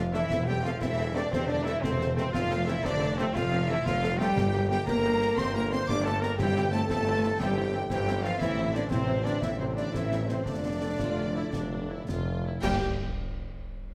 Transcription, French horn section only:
0, 0, Header, 1, 2, 480
1, 0, Start_track
1, 0, Tempo, 337838
1, 445, Time_signature, 12, 3, 24, 8
1, 13881, Tempo, 353357
1, 16281, Tempo, 365186
1, 19440, End_track
2, 0, Start_track
2, 0, Title_t, "French horn section"
2, 0, Program_c, 0, 60
2, 153, Note_on_c, 0, 64, 120
2, 624, Note_off_c, 0, 64, 0
2, 644, Note_on_c, 0, 67, 120
2, 896, Note_on_c, 0, 65, 108
2, 905, Note_off_c, 0, 67, 0
2, 1125, Note_on_c, 0, 64, 127
2, 1152, Note_off_c, 0, 65, 0
2, 1621, Note_on_c, 0, 62, 122
2, 1628, Note_off_c, 0, 64, 0
2, 1865, Note_on_c, 0, 60, 127
2, 1870, Note_off_c, 0, 62, 0
2, 2095, Note_on_c, 0, 62, 127
2, 2112, Note_off_c, 0, 60, 0
2, 2327, Note_on_c, 0, 64, 127
2, 2347, Note_off_c, 0, 62, 0
2, 2578, Note_on_c, 0, 60, 123
2, 2588, Note_off_c, 0, 64, 0
2, 3051, Note_off_c, 0, 60, 0
2, 3068, Note_on_c, 0, 60, 127
2, 3303, Note_on_c, 0, 65, 127
2, 3315, Note_off_c, 0, 60, 0
2, 3788, Note_off_c, 0, 65, 0
2, 3788, Note_on_c, 0, 64, 123
2, 4037, Note_off_c, 0, 64, 0
2, 4051, Note_on_c, 0, 62, 127
2, 4509, Note_on_c, 0, 60, 127
2, 4536, Note_off_c, 0, 62, 0
2, 4756, Note_on_c, 0, 65, 126
2, 4764, Note_off_c, 0, 60, 0
2, 5246, Note_off_c, 0, 65, 0
2, 5246, Note_on_c, 0, 64, 127
2, 5476, Note_on_c, 0, 65, 127
2, 5489, Note_off_c, 0, 64, 0
2, 5945, Note_on_c, 0, 67, 127
2, 5960, Note_off_c, 0, 65, 0
2, 6638, Note_off_c, 0, 67, 0
2, 6655, Note_on_c, 0, 67, 120
2, 6906, Note_off_c, 0, 67, 0
2, 6917, Note_on_c, 0, 70, 127
2, 7627, Note_off_c, 0, 70, 0
2, 7663, Note_on_c, 0, 72, 127
2, 7882, Note_on_c, 0, 70, 127
2, 7889, Note_off_c, 0, 72, 0
2, 8118, Note_off_c, 0, 70, 0
2, 8149, Note_on_c, 0, 72, 127
2, 8372, Note_off_c, 0, 72, 0
2, 8380, Note_on_c, 0, 74, 127
2, 8598, Note_on_c, 0, 69, 127
2, 8611, Note_off_c, 0, 74, 0
2, 8840, Note_off_c, 0, 69, 0
2, 8842, Note_on_c, 0, 70, 127
2, 9069, Note_on_c, 0, 67, 127
2, 9081, Note_off_c, 0, 70, 0
2, 9536, Note_on_c, 0, 69, 115
2, 9542, Note_off_c, 0, 67, 0
2, 9759, Note_off_c, 0, 69, 0
2, 9776, Note_on_c, 0, 69, 127
2, 10486, Note_off_c, 0, 69, 0
2, 10525, Note_on_c, 0, 67, 123
2, 11011, Note_off_c, 0, 67, 0
2, 11212, Note_on_c, 0, 67, 127
2, 11692, Note_off_c, 0, 67, 0
2, 11694, Note_on_c, 0, 65, 125
2, 11917, Note_on_c, 0, 64, 127
2, 11942, Note_off_c, 0, 65, 0
2, 12383, Note_on_c, 0, 62, 111
2, 12403, Note_off_c, 0, 64, 0
2, 12637, Note_on_c, 0, 60, 123
2, 12641, Note_off_c, 0, 62, 0
2, 13134, Note_off_c, 0, 60, 0
2, 13139, Note_on_c, 0, 62, 121
2, 13369, Note_on_c, 0, 64, 106
2, 13387, Note_off_c, 0, 62, 0
2, 13484, Note_off_c, 0, 64, 0
2, 13630, Note_on_c, 0, 60, 103
2, 13846, Note_on_c, 0, 62, 117
2, 13874, Note_off_c, 0, 60, 0
2, 14080, Note_on_c, 0, 64, 111
2, 14100, Note_off_c, 0, 62, 0
2, 14554, Note_on_c, 0, 60, 103
2, 14563, Note_off_c, 0, 64, 0
2, 14790, Note_on_c, 0, 62, 104
2, 14811, Note_off_c, 0, 60, 0
2, 16980, Note_off_c, 0, 62, 0
2, 17718, Note_on_c, 0, 67, 110
2, 17921, Note_off_c, 0, 67, 0
2, 19440, End_track
0, 0, End_of_file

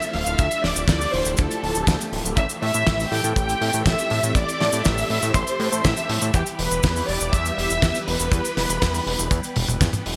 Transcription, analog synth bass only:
0, 0, Header, 1, 2, 480
1, 0, Start_track
1, 0, Key_signature, 0, "minor"
1, 0, Tempo, 495868
1, 378, Time_signature, 4, 2, 24, 8
1, 9836, End_track
2, 0, Start_track
2, 0, Title_t, "Analog synth bass"
2, 0, Program_c, 0, 38
2, 139, Note_on_c, 0, 26, 79
2, 229, Note_off_c, 0, 26, 0
2, 259, Note_on_c, 0, 26, 94
2, 349, Note_off_c, 0, 26, 0
2, 376, Note_on_c, 0, 38, 98
2, 467, Note_off_c, 0, 38, 0
2, 619, Note_on_c, 0, 26, 93
2, 709, Note_off_c, 0, 26, 0
2, 739, Note_on_c, 0, 26, 89
2, 829, Note_off_c, 0, 26, 0
2, 848, Note_on_c, 0, 38, 91
2, 1033, Note_off_c, 0, 38, 0
2, 1099, Note_on_c, 0, 26, 100
2, 1189, Note_off_c, 0, 26, 0
2, 1219, Note_on_c, 0, 26, 108
2, 1309, Note_off_c, 0, 26, 0
2, 1342, Note_on_c, 0, 38, 101
2, 1430, Note_off_c, 0, 38, 0
2, 1579, Note_on_c, 0, 26, 92
2, 1669, Note_off_c, 0, 26, 0
2, 1699, Note_on_c, 0, 26, 84
2, 1789, Note_off_c, 0, 26, 0
2, 1812, Note_on_c, 0, 38, 104
2, 1905, Note_off_c, 0, 38, 0
2, 2059, Note_on_c, 0, 26, 91
2, 2149, Note_off_c, 0, 26, 0
2, 2178, Note_on_c, 0, 26, 91
2, 2268, Note_off_c, 0, 26, 0
2, 2293, Note_on_c, 0, 33, 103
2, 2386, Note_off_c, 0, 33, 0
2, 2538, Note_on_c, 0, 45, 94
2, 2628, Note_off_c, 0, 45, 0
2, 2659, Note_on_c, 0, 45, 88
2, 2748, Note_off_c, 0, 45, 0
2, 2779, Note_on_c, 0, 33, 85
2, 2958, Note_off_c, 0, 33, 0
2, 3018, Note_on_c, 0, 45, 99
2, 3108, Note_off_c, 0, 45, 0
2, 3138, Note_on_c, 0, 45, 107
2, 3228, Note_off_c, 0, 45, 0
2, 3255, Note_on_c, 0, 33, 98
2, 3437, Note_off_c, 0, 33, 0
2, 3499, Note_on_c, 0, 45, 98
2, 3588, Note_off_c, 0, 45, 0
2, 3619, Note_on_c, 0, 45, 84
2, 3709, Note_off_c, 0, 45, 0
2, 3734, Note_on_c, 0, 33, 83
2, 3826, Note_off_c, 0, 33, 0
2, 3978, Note_on_c, 0, 45, 81
2, 4068, Note_off_c, 0, 45, 0
2, 4098, Note_on_c, 0, 45, 94
2, 4188, Note_off_c, 0, 45, 0
2, 4210, Note_on_c, 0, 33, 100
2, 4304, Note_off_c, 0, 33, 0
2, 4458, Note_on_c, 0, 45, 92
2, 4548, Note_off_c, 0, 45, 0
2, 4578, Note_on_c, 0, 45, 91
2, 4668, Note_off_c, 0, 45, 0
2, 4705, Note_on_c, 0, 33, 92
2, 4882, Note_off_c, 0, 33, 0
2, 4939, Note_on_c, 0, 45, 96
2, 5029, Note_off_c, 0, 45, 0
2, 5059, Note_on_c, 0, 45, 104
2, 5148, Note_off_c, 0, 45, 0
2, 5172, Note_on_c, 0, 33, 98
2, 5265, Note_off_c, 0, 33, 0
2, 5418, Note_on_c, 0, 45, 92
2, 5508, Note_off_c, 0, 45, 0
2, 5539, Note_on_c, 0, 45, 83
2, 5628, Note_off_c, 0, 45, 0
2, 5660, Note_on_c, 0, 33, 101
2, 5749, Note_off_c, 0, 33, 0
2, 5899, Note_on_c, 0, 45, 89
2, 5989, Note_off_c, 0, 45, 0
2, 6020, Note_on_c, 0, 45, 94
2, 6109, Note_off_c, 0, 45, 0
2, 6137, Note_on_c, 0, 40, 98
2, 6227, Note_off_c, 0, 40, 0
2, 6380, Note_on_c, 0, 28, 93
2, 6469, Note_off_c, 0, 28, 0
2, 6499, Note_on_c, 0, 28, 88
2, 6589, Note_off_c, 0, 28, 0
2, 6619, Note_on_c, 0, 40, 88
2, 6798, Note_off_c, 0, 40, 0
2, 6859, Note_on_c, 0, 28, 97
2, 6949, Note_off_c, 0, 28, 0
2, 6979, Note_on_c, 0, 28, 105
2, 7069, Note_off_c, 0, 28, 0
2, 7095, Note_on_c, 0, 40, 92
2, 7277, Note_off_c, 0, 40, 0
2, 7339, Note_on_c, 0, 28, 100
2, 7428, Note_off_c, 0, 28, 0
2, 7459, Note_on_c, 0, 28, 84
2, 7549, Note_off_c, 0, 28, 0
2, 7573, Note_on_c, 0, 40, 82
2, 7666, Note_off_c, 0, 40, 0
2, 7818, Note_on_c, 0, 28, 84
2, 7908, Note_off_c, 0, 28, 0
2, 7938, Note_on_c, 0, 28, 94
2, 8028, Note_off_c, 0, 28, 0
2, 8050, Note_on_c, 0, 40, 100
2, 8144, Note_off_c, 0, 40, 0
2, 8298, Note_on_c, 0, 28, 92
2, 8388, Note_off_c, 0, 28, 0
2, 8418, Note_on_c, 0, 28, 90
2, 8508, Note_off_c, 0, 28, 0
2, 8540, Note_on_c, 0, 40, 86
2, 8719, Note_off_c, 0, 40, 0
2, 8778, Note_on_c, 0, 28, 98
2, 8868, Note_off_c, 0, 28, 0
2, 8897, Note_on_c, 0, 28, 102
2, 8988, Note_off_c, 0, 28, 0
2, 9011, Note_on_c, 0, 40, 101
2, 9105, Note_off_c, 0, 40, 0
2, 9258, Note_on_c, 0, 28, 94
2, 9348, Note_off_c, 0, 28, 0
2, 9379, Note_on_c, 0, 28, 84
2, 9468, Note_off_c, 0, 28, 0
2, 9494, Note_on_c, 0, 40, 88
2, 9586, Note_off_c, 0, 40, 0
2, 9738, Note_on_c, 0, 28, 94
2, 9828, Note_off_c, 0, 28, 0
2, 9836, End_track
0, 0, End_of_file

